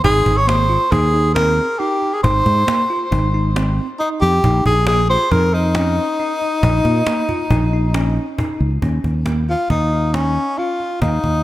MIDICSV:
0, 0, Header, 1, 5, 480
1, 0, Start_track
1, 0, Tempo, 438917
1, 48, Time_signature, 5, 2, 24, 8
1, 12503, End_track
2, 0, Start_track
2, 0, Title_t, "Tenor saxophone"
2, 0, Program_c, 0, 66
2, 46, Note_on_c, 0, 68, 109
2, 407, Note_on_c, 0, 73, 108
2, 423, Note_off_c, 0, 68, 0
2, 528, Note_on_c, 0, 72, 97
2, 544, Note_off_c, 0, 73, 0
2, 1005, Note_on_c, 0, 68, 89
2, 1022, Note_off_c, 0, 72, 0
2, 1463, Note_off_c, 0, 68, 0
2, 1470, Note_on_c, 0, 70, 92
2, 1957, Note_on_c, 0, 67, 83
2, 1973, Note_off_c, 0, 70, 0
2, 2335, Note_on_c, 0, 68, 71
2, 2351, Note_off_c, 0, 67, 0
2, 2436, Note_off_c, 0, 68, 0
2, 2442, Note_on_c, 0, 72, 97
2, 3362, Note_off_c, 0, 72, 0
2, 4368, Note_on_c, 0, 63, 80
2, 4476, Note_off_c, 0, 63, 0
2, 4603, Note_on_c, 0, 67, 99
2, 5052, Note_off_c, 0, 67, 0
2, 5094, Note_on_c, 0, 68, 94
2, 5314, Note_off_c, 0, 68, 0
2, 5334, Note_on_c, 0, 68, 105
2, 5554, Note_off_c, 0, 68, 0
2, 5575, Note_on_c, 0, 72, 114
2, 5810, Note_on_c, 0, 70, 105
2, 5827, Note_off_c, 0, 72, 0
2, 6057, Note_on_c, 0, 63, 84
2, 6074, Note_off_c, 0, 70, 0
2, 9172, Note_off_c, 0, 63, 0
2, 10387, Note_on_c, 0, 65, 91
2, 10601, Note_off_c, 0, 65, 0
2, 10613, Note_on_c, 0, 63, 86
2, 11085, Note_on_c, 0, 61, 78
2, 11101, Note_off_c, 0, 63, 0
2, 11570, Note_on_c, 0, 65, 78
2, 11586, Note_off_c, 0, 61, 0
2, 12037, Note_off_c, 0, 65, 0
2, 12044, Note_on_c, 0, 63, 92
2, 12503, Note_off_c, 0, 63, 0
2, 12503, End_track
3, 0, Start_track
3, 0, Title_t, "Tine electric piano"
3, 0, Program_c, 1, 4
3, 46, Note_on_c, 1, 63, 84
3, 381, Note_off_c, 1, 63, 0
3, 514, Note_on_c, 1, 58, 90
3, 686, Note_off_c, 1, 58, 0
3, 756, Note_on_c, 1, 65, 74
3, 927, Note_off_c, 1, 65, 0
3, 1005, Note_on_c, 1, 63, 73
3, 1173, Note_off_c, 1, 63, 0
3, 1243, Note_on_c, 1, 63, 72
3, 1411, Note_off_c, 1, 63, 0
3, 1483, Note_on_c, 1, 60, 83
3, 1819, Note_off_c, 1, 60, 0
3, 1968, Note_on_c, 1, 63, 77
3, 2302, Note_off_c, 1, 63, 0
3, 2452, Note_on_c, 1, 63, 91
3, 2784, Note_off_c, 1, 63, 0
3, 2923, Note_on_c, 1, 58, 92
3, 3092, Note_off_c, 1, 58, 0
3, 3173, Note_on_c, 1, 65, 72
3, 3338, Note_off_c, 1, 65, 0
3, 3406, Note_on_c, 1, 63, 81
3, 3574, Note_off_c, 1, 63, 0
3, 3654, Note_on_c, 1, 63, 77
3, 3819, Note_off_c, 1, 63, 0
3, 3891, Note_on_c, 1, 60, 80
3, 4224, Note_off_c, 1, 60, 0
3, 4382, Note_on_c, 1, 63, 82
3, 4711, Note_off_c, 1, 63, 0
3, 4861, Note_on_c, 1, 63, 90
3, 5190, Note_off_c, 1, 63, 0
3, 5330, Note_on_c, 1, 58, 83
3, 5496, Note_off_c, 1, 58, 0
3, 5575, Note_on_c, 1, 65, 72
3, 5739, Note_off_c, 1, 65, 0
3, 5821, Note_on_c, 1, 63, 88
3, 5983, Note_off_c, 1, 63, 0
3, 6055, Note_on_c, 1, 63, 77
3, 6219, Note_off_c, 1, 63, 0
3, 6303, Note_on_c, 1, 61, 80
3, 6631, Note_off_c, 1, 61, 0
3, 6779, Note_on_c, 1, 63, 86
3, 7109, Note_off_c, 1, 63, 0
3, 7252, Note_on_c, 1, 63, 90
3, 7584, Note_off_c, 1, 63, 0
3, 7734, Note_on_c, 1, 58, 85
3, 7899, Note_off_c, 1, 58, 0
3, 7972, Note_on_c, 1, 65, 73
3, 8137, Note_off_c, 1, 65, 0
3, 8209, Note_on_c, 1, 63, 83
3, 8375, Note_off_c, 1, 63, 0
3, 8456, Note_on_c, 1, 63, 72
3, 8620, Note_off_c, 1, 63, 0
3, 8690, Note_on_c, 1, 61, 87
3, 9023, Note_off_c, 1, 61, 0
3, 9175, Note_on_c, 1, 63, 78
3, 9506, Note_off_c, 1, 63, 0
3, 9652, Note_on_c, 1, 61, 80
3, 9984, Note_off_c, 1, 61, 0
3, 10147, Note_on_c, 1, 58, 71
3, 10307, Note_off_c, 1, 58, 0
3, 10382, Note_on_c, 1, 65, 67
3, 10544, Note_off_c, 1, 65, 0
3, 10621, Note_on_c, 1, 63, 76
3, 10784, Note_off_c, 1, 63, 0
3, 10860, Note_on_c, 1, 63, 64
3, 11023, Note_off_c, 1, 63, 0
3, 11099, Note_on_c, 1, 61, 81
3, 11430, Note_off_c, 1, 61, 0
3, 11584, Note_on_c, 1, 65, 73
3, 11913, Note_off_c, 1, 65, 0
3, 12050, Note_on_c, 1, 63, 80
3, 12384, Note_off_c, 1, 63, 0
3, 12503, End_track
4, 0, Start_track
4, 0, Title_t, "Fretless electric bass"
4, 0, Program_c, 2, 35
4, 48, Note_on_c, 2, 32, 94
4, 230, Note_off_c, 2, 32, 0
4, 284, Note_on_c, 2, 32, 83
4, 832, Note_off_c, 2, 32, 0
4, 1006, Note_on_c, 2, 39, 88
4, 1736, Note_off_c, 2, 39, 0
4, 2448, Note_on_c, 2, 32, 84
4, 2630, Note_off_c, 2, 32, 0
4, 2689, Note_on_c, 2, 44, 94
4, 2871, Note_off_c, 2, 44, 0
4, 3414, Note_on_c, 2, 32, 99
4, 4140, Note_off_c, 2, 32, 0
4, 4615, Note_on_c, 2, 41, 87
4, 4795, Note_off_c, 2, 41, 0
4, 4854, Note_on_c, 2, 34, 92
4, 5034, Note_off_c, 2, 34, 0
4, 5091, Note_on_c, 2, 34, 93
4, 5636, Note_off_c, 2, 34, 0
4, 5813, Note_on_c, 2, 41, 88
4, 6540, Note_off_c, 2, 41, 0
4, 7251, Note_on_c, 2, 34, 94
4, 7432, Note_off_c, 2, 34, 0
4, 7488, Note_on_c, 2, 46, 92
4, 7670, Note_off_c, 2, 46, 0
4, 8205, Note_on_c, 2, 34, 90
4, 8935, Note_off_c, 2, 34, 0
4, 9410, Note_on_c, 2, 37, 83
4, 9591, Note_off_c, 2, 37, 0
4, 9646, Note_on_c, 2, 39, 80
4, 9829, Note_off_c, 2, 39, 0
4, 9886, Note_on_c, 2, 39, 76
4, 10433, Note_off_c, 2, 39, 0
4, 10608, Note_on_c, 2, 39, 90
4, 11337, Note_off_c, 2, 39, 0
4, 12050, Note_on_c, 2, 39, 96
4, 12232, Note_off_c, 2, 39, 0
4, 12289, Note_on_c, 2, 39, 81
4, 12503, Note_off_c, 2, 39, 0
4, 12503, End_track
5, 0, Start_track
5, 0, Title_t, "Cajon"
5, 48, Note_on_c, 9, 36, 112
5, 158, Note_off_c, 9, 36, 0
5, 287, Note_on_c, 9, 36, 81
5, 396, Note_off_c, 9, 36, 0
5, 532, Note_on_c, 9, 38, 113
5, 642, Note_off_c, 9, 38, 0
5, 776, Note_on_c, 9, 38, 36
5, 885, Note_off_c, 9, 38, 0
5, 1008, Note_on_c, 9, 36, 104
5, 1117, Note_off_c, 9, 36, 0
5, 1255, Note_on_c, 9, 38, 34
5, 1365, Note_off_c, 9, 38, 0
5, 1489, Note_on_c, 9, 38, 115
5, 1598, Note_off_c, 9, 38, 0
5, 1735, Note_on_c, 9, 38, 35
5, 1844, Note_off_c, 9, 38, 0
5, 1966, Note_on_c, 9, 38, 44
5, 2075, Note_off_c, 9, 38, 0
5, 2209, Note_on_c, 9, 38, 31
5, 2319, Note_off_c, 9, 38, 0
5, 2450, Note_on_c, 9, 36, 117
5, 2560, Note_off_c, 9, 36, 0
5, 2691, Note_on_c, 9, 36, 79
5, 2800, Note_off_c, 9, 36, 0
5, 2931, Note_on_c, 9, 38, 112
5, 3041, Note_off_c, 9, 38, 0
5, 3179, Note_on_c, 9, 38, 33
5, 3289, Note_off_c, 9, 38, 0
5, 3413, Note_on_c, 9, 36, 98
5, 3522, Note_off_c, 9, 36, 0
5, 3658, Note_on_c, 9, 38, 34
5, 3767, Note_off_c, 9, 38, 0
5, 3896, Note_on_c, 9, 38, 97
5, 4006, Note_off_c, 9, 38, 0
5, 4131, Note_on_c, 9, 38, 34
5, 4240, Note_off_c, 9, 38, 0
5, 4380, Note_on_c, 9, 38, 42
5, 4490, Note_off_c, 9, 38, 0
5, 4855, Note_on_c, 9, 36, 108
5, 4964, Note_off_c, 9, 36, 0
5, 5092, Note_on_c, 9, 36, 72
5, 5201, Note_off_c, 9, 36, 0
5, 5321, Note_on_c, 9, 38, 114
5, 5431, Note_off_c, 9, 38, 0
5, 5576, Note_on_c, 9, 38, 34
5, 5686, Note_off_c, 9, 38, 0
5, 5812, Note_on_c, 9, 36, 98
5, 5922, Note_off_c, 9, 36, 0
5, 6052, Note_on_c, 9, 38, 34
5, 6162, Note_off_c, 9, 38, 0
5, 6285, Note_on_c, 9, 38, 109
5, 6395, Note_off_c, 9, 38, 0
5, 6533, Note_on_c, 9, 38, 39
5, 6643, Note_off_c, 9, 38, 0
5, 6773, Note_on_c, 9, 38, 43
5, 6882, Note_off_c, 9, 38, 0
5, 7016, Note_on_c, 9, 38, 35
5, 7125, Note_off_c, 9, 38, 0
5, 7251, Note_on_c, 9, 36, 110
5, 7361, Note_off_c, 9, 36, 0
5, 7491, Note_on_c, 9, 36, 73
5, 7600, Note_off_c, 9, 36, 0
5, 7727, Note_on_c, 9, 38, 109
5, 7836, Note_off_c, 9, 38, 0
5, 7970, Note_on_c, 9, 36, 61
5, 7974, Note_on_c, 9, 38, 30
5, 8079, Note_off_c, 9, 36, 0
5, 8083, Note_off_c, 9, 38, 0
5, 8208, Note_on_c, 9, 36, 110
5, 8317, Note_off_c, 9, 36, 0
5, 8448, Note_on_c, 9, 38, 34
5, 8558, Note_off_c, 9, 38, 0
5, 8687, Note_on_c, 9, 38, 106
5, 8797, Note_off_c, 9, 38, 0
5, 8928, Note_on_c, 9, 38, 34
5, 9038, Note_off_c, 9, 38, 0
5, 9169, Note_on_c, 9, 36, 99
5, 9279, Note_off_c, 9, 36, 0
5, 9410, Note_on_c, 9, 38, 33
5, 9519, Note_off_c, 9, 38, 0
5, 9649, Note_on_c, 9, 36, 91
5, 9758, Note_off_c, 9, 36, 0
5, 9889, Note_on_c, 9, 36, 60
5, 9998, Note_off_c, 9, 36, 0
5, 10123, Note_on_c, 9, 38, 94
5, 10233, Note_off_c, 9, 38, 0
5, 10367, Note_on_c, 9, 38, 31
5, 10476, Note_off_c, 9, 38, 0
5, 10608, Note_on_c, 9, 36, 91
5, 10718, Note_off_c, 9, 36, 0
5, 10852, Note_on_c, 9, 38, 31
5, 10961, Note_off_c, 9, 38, 0
5, 11090, Note_on_c, 9, 38, 93
5, 11200, Note_off_c, 9, 38, 0
5, 11328, Note_on_c, 9, 38, 34
5, 11437, Note_off_c, 9, 38, 0
5, 11571, Note_on_c, 9, 38, 32
5, 11680, Note_off_c, 9, 38, 0
5, 11809, Note_on_c, 9, 38, 31
5, 11918, Note_off_c, 9, 38, 0
5, 12048, Note_on_c, 9, 36, 109
5, 12158, Note_off_c, 9, 36, 0
5, 12289, Note_on_c, 9, 36, 72
5, 12398, Note_off_c, 9, 36, 0
5, 12503, End_track
0, 0, End_of_file